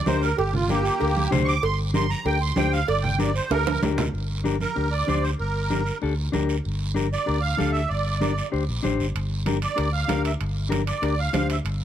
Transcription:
0.06 D2 D4 G4 A#4 C5, high conga, low timbale, short guiro
0.22 A#4, short guiro
0.38 G1 G4, cowbell, long guiro
0.54 F4, low conga
0.69 A#3 D4 G4 A#4, high conga, short guiro
0.85 short guiro
0.99 D2 D4 G4 A#4, cowbell, long guiro
1.17 high conga
1.31 D2 D4 G4 C5, high conga, low conga, short guiro
1.44 C#6 D6, short guiro
1.63 G1 C6, cowbell, long guiro
1.94 D4 G4 A#4 C6, high conga, short guiro
2.10 A#5, short guiro
2.25 D2 D4 G4 A#4 G5, cowbell, long guiro
2.41 C6
2.56 D2 D4 G4 C5 G5, high conga, low timbale, short guiro
2.73 F5, short guiro
2.88 G1 D5, cowbell, long guiro
3.02 G5, low conga
3.19 D4 G4 A#4 D5, high conga, short guiro
3.35 C5, short guiro
3.51 D2 D4 G4 A4 A#4, cowbell, high timbale, long guiro
3.67 high conga, high timbale
3.82 D2 D4 G4 A#4, high conga, low timbale, short guiro
3.98 low conga, low timbale, short guiro
4.14 G1, long guiro
4.44 D4 G4 A#4, high conga, short guiro
4.60 A#4, high conga, short guiro
4.76 D2 D4 G4 A#4, long guiro
4.91 D5
5.07 D2 D4 G4 C5, high conga, short guiro
5.23 C5, short guiro
5.39 G1 A#4, long guiro
5.70 D4 G4 A#4, high conga, short guiro
5.86 short guiro
6.02 D2 D4 G4 A4, long guiro
6.32 D2 D4 G4 A#4, high conga, short guiro
6.49 short guiro
6.65 G1, long guiro
6.94 D4 G4 A#4, high conga, short guiro
7.12 D5, short guiro
7.26 D2 D4 G4 A#4, long guiro
7.41 F5
7.57 D2 D4 G4 A4, high conga, short guiro
7.72 E5, short guiro
7.88 G1 D5, long guiro
8.21 D4 G4 A#4, high conga, short guiro
8.38 short guiro
8.52 D2 D4 G4 C5, long guiro
8.69 A#1
8.83 A1 D4 G4 C5, high conga, short guiro
9.00 G1, short guiro
9.15 G1, high timbale, long guiro
9.46 D4 G4 A#4, high conga, high timbale, short guiro
9.62 D5, high timbale, short guiro
9.76 D2 D4 G4 A#4, high timbale, long guiro
9.93 F5
10.08 D2 D4 G4 A#4, high conga, high timbale, low timbale, short guiro
10.25 E5, high timbale, short guiro
10.41 G1, high timbale, long guiro
10.69 D4 G4 A#4, high conga, high timbale, short guiro
10.87 D5, high timbale, short guiro
11.02 D2 D4 G4 A#4, high timbale, long guiro
11.19 F5
11.33 D2 D4 G4 C5, high conga, high timbale, low timbale, short guiro
11.50 E5, high timbale, short guiro
11.65 G1, high timbale, long guiro

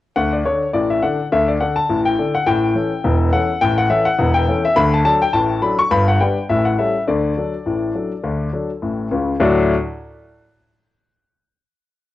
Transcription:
0.16 D2 D3 F#5
0.33 D5
0.45 D3 D4 A4 C#5
0.73 A1 A2 D5
0.90 E5
1.03 D3 D4 A4 F#5
1.32 D2 D3 E5
1.48 D5
1.61 D3 D4 A4 F#5
1.76 A5
1.90 A1 A2
2.05 G5
2.19 D3 D4 A4
2.35 F#5
2.47 A1 A2 G5
2.75 E3 C#4 A4
3.04 E1 E2
3.33 E3 C#4 A4 F#5
3.61 A1 A2 G5
3.78 F#5
3.90 E3 C#4 A4 E5
4.05 F#5
4.19 E1 E2
4.34 G5
4.48 E3 C#4 A4
4.65 E5
4.76 D2 D3 B5
4.94 A5
5.05 F#3 D4 A4 A5
5.22 G5
5.33 A1 A2 A5
5.62 F#3 D4 A4 B5
5.79 C#6
5.91 G1 G2 B5
6.08 F#5
6.20 G3 D4 B4 G5
6.49 A1 A2 E5
6.65 F#5
6.79 G3 C#4 A4 E5
7.08 D2 D3 D5
7.37 F#3 D4 A4
7.66 A1 A2
7.95 F#3 D4 A4
8.23 D2 D3
8.53 F#3 D4 A4
8.82 A1 A2
9.11 C#2 C#3
9.40 D2 A2 F#3 A3 D4 F#4

